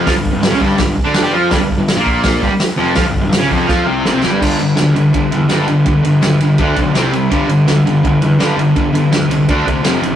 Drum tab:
CC |--------|--------|--------|x-------|
RD |--------|--------|--------|-xxxxxxx|
HH |o-o-o-o-|o-o-o-o-|o-o-----|--------|
SD |o-o-o-o-|o-o-o-o-|o-o-o-oo|--o---o-|
BD |oo-ooo--|oo-ooo--|oo-oo---|o---o---|

CC |--------|--------|--------|
RD |xxxxxxxx|xxxxxxxx|xxxxxxxx|
HH |--------|--------|--------|
SD |--o---o-|--o---o-|--o---o-|
BD |o---oo--|o---o---|o---oo--|